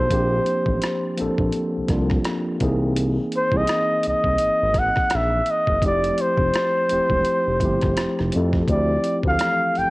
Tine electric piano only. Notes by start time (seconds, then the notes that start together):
0.10 F3 A#3 C4 D4 G4
1.17 F3 A#3 C4 D4 A4
1.88 F3 A#3 C4 D4
1.93 F4
2.59 E3 A#3 C4 D#4
2.64 G#4
3.52 E3 A#3 C4 D#4
3.57 G#4
5.81 F3 A3 C4 E4
5.86 G4
6.89 F3 A3 C4 E4
6.93 G4
7.60 F3 A3 C4 E4
7.65 G4
8.33 F3 A3 C4 E4
8.37 A4
8.68 F3 A3 C4 E4
8.73 G4
9.25 E3 F3 A3 C4
9.29 A4